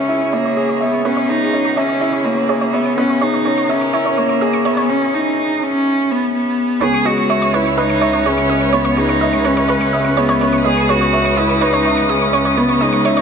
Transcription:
Already playing: C#2 C#3 B3 C#4 G#4 C#5 E5
0.09 E4 D#5
0.21 C#6
0.33 A#3 C#4 C#5
0.45 C#5
0.57 G#4 C#5
0.69 C#6
0.81 B3 D#5 E5
0.94 C#6
1.05 B3 C#4 C#5
1.17 C#5
1.29 D#4 G#4 C#5
1.41 C#6
1.53 C#4 D#5
1.65 C#6
1.77 C#4 C#5 E5
1.89 C#5
2.01 E4 C#5
2.13 C#6
2.25 A#3 C#4 D#5
2.37 C#6
2.49 G#4 C#5
2.61 C#5
2.73 B3 C#5 E5
2.86 C#6
2.98 B3 C#4 D#5
3.09 C#6
3.21 D#4 G#4 C#5
3.34 C#5
3.45 C#4 C#5
3.58 C#6
3.67 C#4 A#4 D#5 E5
3.81 C#6
3.93 E4 C#5
4.06 C#5
4.17 A#3 C#4 C#5
4.29 C#6
4.41 G#4 D#5
4.53 C#6
4.65 B3 C#5 E5
4.77 C#5
4.89 C#4
5.14 D#4
5.63 C#4
6.11 B3
6.35 B3
6.80 C#2 C#3 B3 G#4 C#5
6.90 C#4 C#6
7.01 B4 C#5
7.05 F#4 G#4 D#5
7.18 C#6
7.30 C#5 E5
7.42 C#5
7.54 E4 B4 C#5
7.66 C#6
7.77 D#4 B4 D#5
7.90 C#6
8.01 C#5 E5
8.13 C#5
8.26 C#4 G#4 C#5
8.38 C#6
8.49 C#4 D#5
8.61 C#6
8.73 B3 C#5
8.85 C#5
8.97 D#4 G#4 C#5
9.09 C#6
9.21 D#5 E5
9.33 C#6
9.45 C#4 B4 C#5
9.57 C#5
9.68 B4 C#5
9.81 C#6
9.93 D#5 E5
10.05 C#6
10.17 B3 G#4 C#5
10.29 C#5
10.41 C#4 C#5
10.53 C#6 D#6
10.65 B3 G#4 D#5
10.77 C#6
10.89 F#4 G#4 C#5
11.01 C#5
11.13 C#5 E5
11.25 C#6
11.37 E4 B4 D#5
11.49 C#6
11.61 D#4 B4 C#5
11.73 C#5
11.85 C#5 E5
11.97 C#6
12.03 D#4
12.09 C#4 G#4 D#5
12.21 C#6
12.33 C#4 C#5
12.45 C#5
12.57 B3 C#5
12.69 C#6
12.81 D#4 G#4 D#5
12.93 C#6
13.05 C#5 E5
13.17 C#5

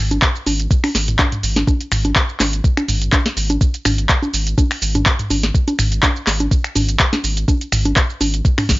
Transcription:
0.00 G#1
0.11 closed hi-hat, high conga, shaker
0.22 kick, clap, shaker
0.36 shaker
0.46 G#1, open hi-hat, high conga, shaker
0.60 closed hi-hat, shaker
0.71 kick, shaker
0.84 finger snap, open hi-hat, high conga, shaker
0.95 G#1, snare, open hi-hat, shaker
1.08 closed hi-hat, mid tom, shaker
1.19 kick, clap, high conga, shaker
1.32 closed hi-hat, mid tom, shaker
1.43 G#1, open hi-hat, shaker
1.56 snare, closed hi-hat, high conga, shaker
1.67 kick, high conga, shaker
1.81 closed hi-hat, shaker
1.92 G#1, finger snap, mid tom, open hi-hat, shaker
2.05 closed hi-hat, high conga, shaker
2.16 kick, clap, shaker
2.29 shaker
2.40 G#1, snare, clap, open hi-hat, high conga, shaker
2.53 closed hi-hat, shaker
2.64 kick, shaker
2.77 finger snap, closed hi-hat, high conga, shaker
2.88 G#1, mid tom, open hi-hat, shaker
3.02 closed hi-hat, shaker
3.12 kick, clap, high conga, shaker
3.26 snare, closed hi-hat, shaker
3.37 G#1, open hi-hat, shaker
3.50 closed hi-hat, high conga, shaker
3.61 kick, shaker
3.74 closed hi-hat, shaker
3.85 G#1, finger snap, mid tom, open hi-hat, high conga, shaker
3.98 closed hi-hat, shaker
4.09 kick, clap, shaker
4.22 high conga, shaker
4.34 G#1, open hi-hat, shaker
4.47 closed hi-hat, shaker
4.58 kick, high conga, shaker
4.71 finger snap, open hi-hat, shaker
4.82 G#1, open hi-hat, shaker
4.95 closed hi-hat, mid tom, high conga, shaker
5.06 kick, clap, shaker
5.19 closed hi-hat, mid tom, shaker
5.30 G#1, open hi-hat, high conga, shaker
5.43 snare, closed hi-hat, shaker
5.55 kick, shaker
5.68 closed hi-hat, high conga, shaker
5.79 G#1, finger snap, mid tom, open hi-hat, shaker
5.92 closed hi-hat, shaker
6.03 kick, clap, high conga, shaker
6.16 shaker
6.27 G#1, snare, clap, open hi-hat, shaker
6.40 closed hi-hat, high conga, shaker
6.51 kick, shaker
6.64 finger snap, closed hi-hat, shaker
6.76 G#1, mid tom, open hi-hat, high conga, shaker
6.89 closed hi-hat, shaker
6.99 kick, clap, shaker
7.13 snare, closed hi-hat, high conga, shaker
7.24 G#1, open hi-hat, shaker
7.37 closed hi-hat, shaker
7.48 kick, high conga, shaker
7.61 closed hi-hat, shaker
7.72 G#1, finger snap, mid tom, open hi-hat, shaker
7.85 closed hi-hat, high conga, shaker
7.96 kick, clap, shaker
8.10 shaker
8.21 G#1, open hi-hat, high conga, shaker
8.34 closed hi-hat, shaker
8.45 kick, shaker
8.58 finger snap, mid tom, open hi-hat, high conga, shaker
8.69 G#1, kick, snare, open hi-hat, high tom, shaker

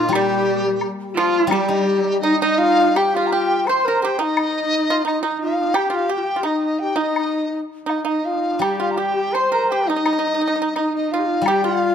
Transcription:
Already playing: A#2 D#4 F4
0.09 G3 G4
0.13 G3 G4, high woodblock
0.81 high woodblock
1.09 G4
1.15 F3 F4
1.47 G3
1.51 G3 G4, high woodblock
1.68 D#4
2.20 D#4 D#5
2.39 D#4 D#5
2.58 F4 F5
2.95 G4 G5, high woodblock
3.15 F4 F5
3.26 A#5
3.32 G4 G5
3.67 C5 C6, high woodblock
3.85 A#4 A#5
4.01 G4 A#4 G5
4.19 D#4 D#5
4.37 high woodblock
4.90 F4
5.05 D#4 D#5, high woodblock
5.22 D#4 F4 D#5
5.41 F4 F5
5.74 G4 G5, high woodblock
5.90 F4 G5
5.95 F5
6.09 G4 G5
6.18 F4
6.24 G4
6.36 F4
6.43 D#4 D#5, high woodblock
6.79 G4 G5
6.96 D#4 D#5
7.16 high woodblock
7.86 D#4 D#5, high woodblock, low woodblock
8.03 D#4 D#5 F5
8.24 F4 F5
8.59 G3 G4 G5, high woodblock
8.80 F4 F5
8.90 A#5
8.96 G4 G5
9.34 C5 C6, high woodblock
9.52 A#4 A#5
9.69 G4 G5
9.87 D#4 D#5
9.96 D#4
10.06 D#4, high woodblock
10.13 D#4
10.19 D#4
10.27 D#4
10.35 D#4
10.41 D#4
10.48 D#4
10.56 D#4
10.62 D#4
10.76 D#4 D#5, high woodblock
10.94 D#4 D#5
11.11 F4 F5
11.19 G4
11.26 F4
11.42 G3 G5
11.46 G4, high woodblock
11.64 F4 F5
11.68 F4

